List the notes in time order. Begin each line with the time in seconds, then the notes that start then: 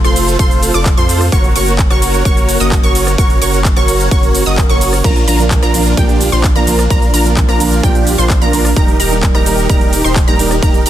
Already playing: A3 C4 F4
0.04 F1 F4 A4 C5 C6, cross-stick, closed hi-hat, shaker
0.16 open hi-hat, ride, shaker
0.28 closed hi-hat, shaker
0.39 F1 F4 A4 C5 C6, kick, closed hi-hat, ride, shaker
0.51 closed hi-hat, shaker
0.63 open hi-hat, ride, shaker
0.74 F1 F4 A4 D5 D6, closed hi-hat, shaker
0.86 kick, clap, closed hi-hat, ride, shaker
0.97 F2 F4 A4 C5 C6, closed hi-hat, shaker
1.09 open hi-hat, ride, shaker
1.21 cross-stick, open hi-hat, shaker
1.32 F#1 A#3 C#4 F#4 A#4 C#5 C#6, kick, closed hi-hat, ride, shaker
1.44 closed hi-hat, shaker
1.56 F#1 F#4 A#4 C#5 C#6, open hi-hat, ride, shaker
1.67 closed hi-hat, shaker
1.79 kick, clap, closed hi-hat, ride, shaker
1.90 F#1 F#4 A#4 C#5 C#6, cross-stick, closed hi-hat, shaker
2.02 open hi-hat, ride, shaker
2.14 closed hi-hat, shaker
2.25 F#1 F#4 A#4 C#5 C#6, kick, closed hi-hat, ride, shaker
2.37 closed hi-hat, shaker
2.49 open hi-hat, ride, shaker
2.60 F#1 F#4 A#4 D#5 D#6, closed hi-hat, shaker
2.72 kick, clap, closed hi-hat, ride, shaker
2.83 F#1 F#4 A#4 C#5 C#6, closed hi-hat, shaker
2.95 open hi-hat, ride, shaker
3.07 cross-stick, closed hi-hat, shaker
3.18 F#1 F#4 A#4 C#5 C#6, kick, closed hi-hat, ride, shaker
3.30 closed hi-hat, shaker
3.42 F#1 F#4 A#4 C#5 C#6, open hi-hat, ride, shaker
3.53 closed hi-hat, shaker
3.65 kick, clap, closed hi-hat, ride, shaker
3.76 F#1 F#4 A#4 C#5 C#6, cross-stick, closed hi-hat, shaker
3.88 open hi-hat, ride, shaker
4.00 closed hi-hat, shaker
4.11 F#1 F#4 A#4 C#5 C#6, kick, closed hi-hat, ride, swell, shaker
4.23 closed hi-hat, shaker
4.35 open hi-hat, ride, shaker
4.46 F#1 F#4 A#4 D#5 D#6, closed hi-hat, shaker
4.58 kick, clap, closed hi-hat, ride, shaker
4.69 F#1 F#4 A#4 C#5 C#6, closed hi-hat, shaker
4.81 open hi-hat, ride, shaker
4.93 cross-stick, open hi-hat, shaker
5.04 A#1 A#2 F3 A#3 D4 F4 A#4 A#5, kick, closed hi-hat, crash, ride, shaker
5.16 closed hi-hat, shaker
5.28 A#1 D4 F4 A#4 A#5, open hi-hat, ride, shaker
5.39 A#2 F3 A#3 D4 A#4, closed hi-hat, shaker
5.51 kick, clap, closed hi-hat, ride, shaker
5.63 A#1 D4 F4 A#4 A#5, cross-stick, closed hi-hat, shaker
5.74 A#2 F3 A#3 D4 A#4, open hi-hat, ride, shaker
5.86 closed hi-hat, shaker
5.97 A#1 A#2 F3 A#3 D4 F4 G4 A#4 G5, kick, closed hi-hat, ride, shaker
6.09 closed hi-hat, shaker
6.21 open hi-hat, ride, shaker
6.32 A#1 D4 F4 C5 C6, closed hi-hat, shaker
6.44 kick, clap, closed hi-hat, ride, shaker
6.55 A#1 A#2 F3 A#3 D4 F4 A#4 A#5, closed hi-hat, shaker
6.67 A#2 F3 A#3 D4 A#4, open hi-hat, ride, shaker
6.79 cross-stick, closed hi-hat, shaker
6.90 A#1 A#2 F3 A#3 D4 F4 A#4 A#5, kick, closed hi-hat, ride, shaker
7.02 closed hi-hat, shaker
7.14 A#1 D4 F4 A#4 A#5, open hi-hat, ride, shaker
7.25 A#2 F3 A#3 D4 A#4, closed hi-hat, shaker
7.37 kick, clap, closed hi-hat, ride, shaker
7.49 A#1 D4 F4 A#4 A#5, cross-stick, closed hi-hat, shaker
7.60 A#2 F3 A#3 D4 A#4, open hi-hat, ride, shaker
7.72 closed hi-hat, shaker
7.83 A#1 A#2 F3 A#3 D4 F4 G4 A#4 G5, kick, closed hi-hat, ride, shaker
7.95 closed hi-hat, shaker
8.07 open hi-hat, ride, shaker
8.18 A#1 D4 F4 C5 C6, closed hi-hat, shaker
8.30 kick, clap, closed hi-hat, ride, shaker
8.41 A#1 A#2 F3 A#3 D4 F4 A#4 A#5, closed hi-hat, shaker
8.53 F3 A#3 D4 A#4, open hi-hat, ride, shaker
8.65 cross-stick, open hi-hat, shaker
8.76 D#1 D#3 G3 A#3 D#4 G4 A#4 A#5, kick, closed hi-hat, ride, shaker
8.88 closed hi-hat, shaker
9.00 D#1 D#4 G4 A#4 A#5, open hi-hat, ride, shaker
9.11 G3 A#3 D#4 A#4, closed hi-hat, shaker
9.23 kick, clap, closed hi-hat, ride, shaker
9.35 D#1 D#4 G4 A#4 A#5, cross-stick, closed hi-hat, shaker
9.46 G3 A#3 D#4 A#4, open hi-hat, ride, shaker
9.58 closed hi-hat, shaker
9.69 D#1 G3 A#3 D#4 G4 A#4 A#5, kick, closed hi-hat, ride, shaker
9.81 closed hi-hat, shaker
9.93 open hi-hat, ride, shaker
10.04 D#1 D#4 G4 C5 C6, closed hi-hat, shaker
10.16 kick, clap, closed hi-hat, ride, shaker
10.27 D#1 G3 A#3 D#4 G4 A#4 A#5, closed hi-hat, shaker
10.39 G3 A#3 D#4 A#4, open hi-hat, ride, shaker
10.51 cross-stick, closed hi-hat, shaker
10.62 D#1 G3 A#3 D#4 G4 A#4 A#5, kick, closed hi-hat, ride, shaker
10.74 closed hi-hat, shaker
10.86 D#1 D#4 G4 A#4 A#5, open hi-hat, ride, shaker